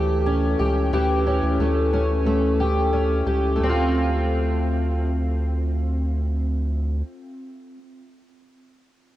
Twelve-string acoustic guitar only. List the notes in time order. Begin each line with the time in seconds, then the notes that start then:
Already playing: E3 A3 C#4 G4
0.26 C#4
0.59 G4
0.93 E3 G4
1.27 C#4
1.60 A3
1.94 C#4
2.26 A3
2.60 G4
2.93 C#4
3.27 G4
3.55 A3
3.63 C4
3.69 F4